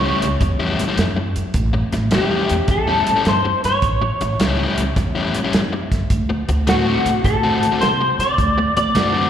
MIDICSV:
0, 0, Header, 1, 6, 480
1, 0, Start_track
1, 0, Tempo, 569801
1, 1300, Time_signature, 4, 2, 24, 8
1, 7833, End_track
2, 0, Start_track
2, 0, Title_t, "Clean electric guitar"
2, 0, Program_c, 0, 27
2, 0, Note_on_c, 0, 73, 90
2, 1120, Note_off_c, 0, 73, 0
2, 1803, Note_on_c, 0, 67, 83
2, 2278, Note_off_c, 0, 67, 0
2, 2281, Note_on_c, 0, 69, 81
2, 2765, Note_off_c, 0, 69, 0
2, 2765, Note_on_c, 0, 72, 87
2, 3073, Note_off_c, 0, 72, 0
2, 3076, Note_on_c, 0, 73, 86
2, 3997, Note_off_c, 0, 73, 0
2, 5633, Note_on_c, 0, 66, 77
2, 6101, Note_off_c, 0, 66, 0
2, 6104, Note_on_c, 0, 69, 78
2, 6550, Note_off_c, 0, 69, 0
2, 6579, Note_on_c, 0, 72, 94
2, 6905, Note_off_c, 0, 72, 0
2, 6908, Note_on_c, 0, 74, 98
2, 7377, Note_off_c, 0, 74, 0
2, 7388, Note_on_c, 0, 74, 94
2, 7833, Note_off_c, 0, 74, 0
2, 7833, End_track
3, 0, Start_track
3, 0, Title_t, "Overdriven electric guitar"
3, 0, Program_c, 1, 29
3, 24, Note_on_c, 1, 64, 76
3, 26, Note_on_c, 1, 61, 82
3, 31, Note_on_c, 1, 55, 71
3, 36, Note_on_c, 1, 45, 61
3, 207, Note_off_c, 1, 64, 0
3, 208, Note_off_c, 1, 61, 0
3, 211, Note_off_c, 1, 55, 0
3, 213, Note_off_c, 1, 45, 0
3, 502, Note_on_c, 1, 64, 89
3, 505, Note_on_c, 1, 61, 89
3, 506, Note_on_c, 1, 55, 81
3, 511, Note_on_c, 1, 45, 71
3, 686, Note_off_c, 1, 64, 0
3, 688, Note_off_c, 1, 55, 0
3, 688, Note_off_c, 1, 61, 0
3, 691, Note_off_c, 1, 45, 0
3, 741, Note_on_c, 1, 64, 77
3, 748, Note_on_c, 1, 61, 76
3, 749, Note_on_c, 1, 55, 69
3, 753, Note_on_c, 1, 45, 59
3, 868, Note_off_c, 1, 64, 0
3, 872, Note_off_c, 1, 55, 0
3, 872, Note_off_c, 1, 61, 0
3, 874, Note_off_c, 1, 45, 0
3, 1781, Note_on_c, 1, 45, 72
3, 1785, Note_on_c, 1, 55, 79
3, 1787, Note_on_c, 1, 61, 77
3, 1791, Note_on_c, 1, 64, 86
3, 1934, Note_off_c, 1, 64, 0
3, 1938, Note_off_c, 1, 61, 0
3, 1941, Note_off_c, 1, 55, 0
3, 1942, Note_off_c, 1, 45, 0
3, 1944, Note_on_c, 1, 64, 83
3, 1948, Note_on_c, 1, 61, 74
3, 1951, Note_on_c, 1, 55, 69
3, 1954, Note_on_c, 1, 45, 66
3, 2128, Note_off_c, 1, 64, 0
3, 2130, Note_off_c, 1, 61, 0
3, 2131, Note_off_c, 1, 55, 0
3, 2133, Note_off_c, 1, 45, 0
3, 2421, Note_on_c, 1, 64, 90
3, 2425, Note_on_c, 1, 61, 92
3, 2426, Note_on_c, 1, 55, 84
3, 2431, Note_on_c, 1, 45, 68
3, 2606, Note_off_c, 1, 64, 0
3, 2608, Note_off_c, 1, 61, 0
3, 2609, Note_off_c, 1, 55, 0
3, 2611, Note_off_c, 1, 45, 0
3, 2661, Note_on_c, 1, 64, 72
3, 2663, Note_on_c, 1, 61, 77
3, 2667, Note_on_c, 1, 55, 68
3, 2669, Note_on_c, 1, 45, 68
3, 2789, Note_off_c, 1, 64, 0
3, 2790, Note_off_c, 1, 61, 0
3, 2792, Note_off_c, 1, 55, 0
3, 2793, Note_off_c, 1, 45, 0
3, 3705, Note_on_c, 1, 45, 71
3, 3710, Note_on_c, 1, 55, 76
3, 3711, Note_on_c, 1, 61, 82
3, 3715, Note_on_c, 1, 64, 82
3, 3859, Note_off_c, 1, 64, 0
3, 3860, Note_off_c, 1, 61, 0
3, 3864, Note_off_c, 1, 45, 0
3, 3865, Note_off_c, 1, 55, 0
3, 3869, Note_on_c, 1, 64, 72
3, 3870, Note_on_c, 1, 61, 74
3, 3875, Note_on_c, 1, 55, 74
3, 3877, Note_on_c, 1, 45, 63
3, 4050, Note_off_c, 1, 64, 0
3, 4051, Note_off_c, 1, 61, 0
3, 4054, Note_off_c, 1, 55, 0
3, 4055, Note_off_c, 1, 45, 0
3, 4340, Note_on_c, 1, 64, 89
3, 4347, Note_on_c, 1, 61, 96
3, 4348, Note_on_c, 1, 55, 71
3, 4349, Note_on_c, 1, 45, 72
3, 4526, Note_off_c, 1, 64, 0
3, 4530, Note_off_c, 1, 55, 0
3, 4530, Note_off_c, 1, 61, 0
3, 4531, Note_off_c, 1, 45, 0
3, 4584, Note_on_c, 1, 64, 76
3, 4585, Note_on_c, 1, 61, 70
3, 4587, Note_on_c, 1, 55, 64
3, 4593, Note_on_c, 1, 45, 56
3, 4711, Note_off_c, 1, 61, 0
3, 4711, Note_off_c, 1, 64, 0
3, 4712, Note_off_c, 1, 55, 0
3, 4715, Note_off_c, 1, 45, 0
3, 5618, Note_on_c, 1, 50, 76
3, 5621, Note_on_c, 1, 57, 80
3, 5626, Note_on_c, 1, 60, 74
3, 5627, Note_on_c, 1, 66, 82
3, 5774, Note_off_c, 1, 66, 0
3, 5779, Note_off_c, 1, 60, 0
3, 5781, Note_off_c, 1, 50, 0
3, 5782, Note_off_c, 1, 57, 0
3, 5784, Note_on_c, 1, 66, 72
3, 5789, Note_on_c, 1, 60, 72
3, 5791, Note_on_c, 1, 57, 64
3, 5795, Note_on_c, 1, 50, 59
3, 5968, Note_off_c, 1, 66, 0
3, 5971, Note_off_c, 1, 60, 0
3, 5972, Note_off_c, 1, 57, 0
3, 5974, Note_off_c, 1, 50, 0
3, 6262, Note_on_c, 1, 66, 90
3, 6268, Note_on_c, 1, 60, 76
3, 6273, Note_on_c, 1, 57, 73
3, 6274, Note_on_c, 1, 50, 71
3, 6447, Note_off_c, 1, 66, 0
3, 6450, Note_off_c, 1, 60, 0
3, 6453, Note_off_c, 1, 50, 0
3, 6453, Note_off_c, 1, 57, 0
3, 6501, Note_on_c, 1, 66, 77
3, 6505, Note_on_c, 1, 60, 78
3, 6508, Note_on_c, 1, 57, 65
3, 6511, Note_on_c, 1, 50, 70
3, 6630, Note_off_c, 1, 66, 0
3, 6631, Note_off_c, 1, 60, 0
3, 6633, Note_off_c, 1, 57, 0
3, 6634, Note_off_c, 1, 50, 0
3, 7538, Note_on_c, 1, 50, 75
3, 7543, Note_on_c, 1, 60, 84
3, 7544, Note_on_c, 1, 57, 85
3, 7546, Note_on_c, 1, 66, 83
3, 7688, Note_off_c, 1, 66, 0
3, 7693, Note_off_c, 1, 60, 0
3, 7696, Note_off_c, 1, 57, 0
3, 7698, Note_off_c, 1, 50, 0
3, 7698, Note_on_c, 1, 66, 73
3, 7703, Note_on_c, 1, 60, 79
3, 7706, Note_on_c, 1, 57, 66
3, 7709, Note_on_c, 1, 50, 69
3, 7833, Note_off_c, 1, 50, 0
3, 7833, Note_off_c, 1, 57, 0
3, 7833, Note_off_c, 1, 60, 0
3, 7833, Note_off_c, 1, 66, 0
3, 7833, End_track
4, 0, Start_track
4, 0, Title_t, "Upright bass"
4, 0, Program_c, 2, 32
4, 0, Note_on_c, 2, 37, 89
4, 88, Note_off_c, 2, 37, 0
4, 189, Note_on_c, 2, 37, 93
4, 296, Note_off_c, 2, 37, 0
4, 344, Note_on_c, 2, 40, 94
4, 675, Note_off_c, 2, 40, 0
4, 826, Note_on_c, 2, 42, 89
4, 1047, Note_off_c, 2, 42, 0
4, 1149, Note_on_c, 2, 42, 78
4, 1256, Note_off_c, 2, 42, 0
4, 1302, Note_on_c, 2, 33, 102
4, 1524, Note_off_c, 2, 33, 0
4, 1626, Note_on_c, 2, 33, 95
4, 1734, Note_off_c, 2, 33, 0
4, 1785, Note_on_c, 2, 40, 88
4, 2006, Note_off_c, 2, 40, 0
4, 2110, Note_on_c, 2, 40, 89
4, 2217, Note_off_c, 2, 40, 0
4, 2261, Note_on_c, 2, 40, 92
4, 2592, Note_off_c, 2, 40, 0
4, 2746, Note_on_c, 2, 43, 78
4, 2967, Note_off_c, 2, 43, 0
4, 3068, Note_on_c, 2, 43, 85
4, 3176, Note_off_c, 2, 43, 0
4, 3222, Note_on_c, 2, 33, 88
4, 3444, Note_off_c, 2, 33, 0
4, 3547, Note_on_c, 2, 33, 86
4, 3655, Note_off_c, 2, 33, 0
4, 3705, Note_on_c, 2, 37, 81
4, 3927, Note_off_c, 2, 37, 0
4, 4027, Note_on_c, 2, 37, 77
4, 4135, Note_off_c, 2, 37, 0
4, 4183, Note_on_c, 2, 40, 87
4, 4515, Note_off_c, 2, 40, 0
4, 4665, Note_on_c, 2, 42, 72
4, 4886, Note_off_c, 2, 42, 0
4, 4988, Note_on_c, 2, 42, 75
4, 5096, Note_off_c, 2, 42, 0
4, 5144, Note_on_c, 2, 38, 84
4, 5366, Note_off_c, 2, 38, 0
4, 5465, Note_on_c, 2, 38, 89
4, 5574, Note_off_c, 2, 38, 0
4, 5621, Note_on_c, 2, 45, 81
4, 5844, Note_off_c, 2, 45, 0
4, 5943, Note_on_c, 2, 45, 81
4, 6052, Note_off_c, 2, 45, 0
4, 6101, Note_on_c, 2, 45, 90
4, 6433, Note_off_c, 2, 45, 0
4, 6580, Note_on_c, 2, 48, 78
4, 6803, Note_off_c, 2, 48, 0
4, 6897, Note_on_c, 2, 48, 80
4, 7009, Note_off_c, 2, 48, 0
4, 7065, Note_on_c, 2, 38, 92
4, 7286, Note_off_c, 2, 38, 0
4, 7386, Note_on_c, 2, 38, 86
4, 7494, Note_off_c, 2, 38, 0
4, 7544, Note_on_c, 2, 42, 84
4, 7766, Note_off_c, 2, 42, 0
4, 7833, End_track
5, 0, Start_track
5, 0, Title_t, "Muted overdriven electric guitar strokes"
5, 345, Note_on_c, 9, 29, 46
5, 429, Note_off_c, 9, 29, 0
5, 981, Note_on_c, 9, 29, 55
5, 1065, Note_off_c, 9, 29, 0
5, 1459, Note_on_c, 9, 29, 53
5, 1543, Note_off_c, 9, 29, 0
5, 1622, Note_on_c, 9, 29, 46
5, 1707, Note_off_c, 9, 29, 0
5, 2257, Note_on_c, 9, 29, 42
5, 2341, Note_off_c, 9, 29, 0
5, 2906, Note_on_c, 9, 29, 50
5, 2990, Note_off_c, 9, 29, 0
5, 3383, Note_on_c, 9, 29, 54
5, 3467, Note_off_c, 9, 29, 0
5, 3547, Note_on_c, 9, 29, 44
5, 3632, Note_off_c, 9, 29, 0
5, 4183, Note_on_c, 9, 29, 42
5, 4267, Note_off_c, 9, 29, 0
5, 4823, Note_on_c, 9, 29, 44
5, 4907, Note_off_c, 9, 29, 0
5, 5302, Note_on_c, 9, 29, 48
5, 5387, Note_off_c, 9, 29, 0
5, 5464, Note_on_c, 9, 29, 38
5, 5549, Note_off_c, 9, 29, 0
5, 6107, Note_on_c, 9, 29, 45
5, 6191, Note_off_c, 9, 29, 0
5, 6746, Note_on_c, 9, 29, 53
5, 6830, Note_off_c, 9, 29, 0
5, 7225, Note_on_c, 9, 29, 51
5, 7310, Note_off_c, 9, 29, 0
5, 7386, Note_on_c, 9, 29, 42
5, 7470, Note_off_c, 9, 29, 0
5, 7833, End_track
6, 0, Start_track
6, 0, Title_t, "Drums"
6, 187, Note_on_c, 9, 42, 69
6, 271, Note_off_c, 9, 42, 0
6, 342, Note_on_c, 9, 36, 95
6, 343, Note_on_c, 9, 42, 70
6, 427, Note_off_c, 9, 36, 0
6, 427, Note_off_c, 9, 42, 0
6, 669, Note_on_c, 9, 42, 63
6, 680, Note_on_c, 9, 38, 31
6, 753, Note_off_c, 9, 42, 0
6, 765, Note_off_c, 9, 38, 0
6, 822, Note_on_c, 9, 42, 78
6, 834, Note_on_c, 9, 38, 94
6, 906, Note_off_c, 9, 42, 0
6, 918, Note_off_c, 9, 38, 0
6, 1144, Note_on_c, 9, 42, 64
6, 1228, Note_off_c, 9, 42, 0
6, 1297, Note_on_c, 9, 42, 77
6, 1300, Note_on_c, 9, 36, 103
6, 1381, Note_off_c, 9, 42, 0
6, 1384, Note_off_c, 9, 36, 0
6, 1621, Note_on_c, 9, 42, 54
6, 1633, Note_on_c, 9, 38, 29
6, 1706, Note_off_c, 9, 42, 0
6, 1717, Note_off_c, 9, 38, 0
6, 1776, Note_on_c, 9, 42, 76
6, 1788, Note_on_c, 9, 38, 105
6, 1860, Note_off_c, 9, 42, 0
6, 1872, Note_off_c, 9, 38, 0
6, 2101, Note_on_c, 9, 42, 55
6, 2186, Note_off_c, 9, 42, 0
6, 2257, Note_on_c, 9, 42, 66
6, 2259, Note_on_c, 9, 36, 101
6, 2268, Note_on_c, 9, 38, 25
6, 2341, Note_off_c, 9, 42, 0
6, 2343, Note_off_c, 9, 36, 0
6, 2353, Note_off_c, 9, 38, 0
6, 2583, Note_on_c, 9, 42, 64
6, 2667, Note_off_c, 9, 42, 0
6, 2739, Note_on_c, 9, 42, 70
6, 2751, Note_on_c, 9, 38, 88
6, 2824, Note_off_c, 9, 42, 0
6, 2836, Note_off_c, 9, 38, 0
6, 3066, Note_on_c, 9, 42, 66
6, 3078, Note_on_c, 9, 38, 31
6, 3150, Note_off_c, 9, 42, 0
6, 3162, Note_off_c, 9, 38, 0
6, 3219, Note_on_c, 9, 42, 72
6, 3221, Note_on_c, 9, 36, 99
6, 3304, Note_off_c, 9, 42, 0
6, 3305, Note_off_c, 9, 36, 0
6, 3545, Note_on_c, 9, 42, 53
6, 3629, Note_off_c, 9, 42, 0
6, 3704, Note_on_c, 9, 42, 83
6, 3715, Note_on_c, 9, 38, 108
6, 3788, Note_off_c, 9, 42, 0
6, 3800, Note_off_c, 9, 38, 0
6, 4023, Note_on_c, 9, 42, 68
6, 4107, Note_off_c, 9, 42, 0
6, 4181, Note_on_c, 9, 36, 99
6, 4182, Note_on_c, 9, 42, 77
6, 4193, Note_on_c, 9, 38, 25
6, 4265, Note_off_c, 9, 36, 0
6, 4266, Note_off_c, 9, 42, 0
6, 4278, Note_off_c, 9, 38, 0
6, 4503, Note_on_c, 9, 42, 63
6, 4587, Note_off_c, 9, 42, 0
6, 4659, Note_on_c, 9, 42, 70
6, 4671, Note_on_c, 9, 38, 103
6, 4743, Note_off_c, 9, 42, 0
6, 4755, Note_off_c, 9, 38, 0
6, 4983, Note_on_c, 9, 36, 81
6, 4984, Note_on_c, 9, 42, 60
6, 4996, Note_on_c, 9, 38, 34
6, 5068, Note_off_c, 9, 36, 0
6, 5068, Note_off_c, 9, 42, 0
6, 5080, Note_off_c, 9, 38, 0
6, 5140, Note_on_c, 9, 42, 83
6, 5141, Note_on_c, 9, 36, 94
6, 5224, Note_off_c, 9, 42, 0
6, 5225, Note_off_c, 9, 36, 0
6, 5464, Note_on_c, 9, 42, 56
6, 5548, Note_off_c, 9, 42, 0
6, 5622, Note_on_c, 9, 42, 79
6, 5634, Note_on_c, 9, 38, 108
6, 5706, Note_off_c, 9, 42, 0
6, 5718, Note_off_c, 9, 38, 0
6, 5946, Note_on_c, 9, 42, 62
6, 6030, Note_off_c, 9, 42, 0
6, 6102, Note_on_c, 9, 36, 84
6, 6103, Note_on_c, 9, 42, 70
6, 6115, Note_on_c, 9, 38, 28
6, 6186, Note_off_c, 9, 36, 0
6, 6188, Note_off_c, 9, 42, 0
6, 6199, Note_off_c, 9, 38, 0
6, 6426, Note_on_c, 9, 42, 59
6, 6510, Note_off_c, 9, 42, 0
6, 6583, Note_on_c, 9, 42, 73
6, 6595, Note_on_c, 9, 38, 96
6, 6668, Note_off_c, 9, 42, 0
6, 6679, Note_off_c, 9, 38, 0
6, 6907, Note_on_c, 9, 42, 64
6, 6918, Note_on_c, 9, 38, 31
6, 6991, Note_off_c, 9, 42, 0
6, 7003, Note_off_c, 9, 38, 0
6, 7062, Note_on_c, 9, 36, 96
6, 7064, Note_on_c, 9, 42, 69
6, 7146, Note_off_c, 9, 36, 0
6, 7148, Note_off_c, 9, 42, 0
6, 7385, Note_on_c, 9, 42, 55
6, 7469, Note_off_c, 9, 42, 0
6, 7540, Note_on_c, 9, 42, 81
6, 7552, Note_on_c, 9, 38, 99
6, 7625, Note_off_c, 9, 42, 0
6, 7636, Note_off_c, 9, 38, 0
6, 7833, End_track
0, 0, End_of_file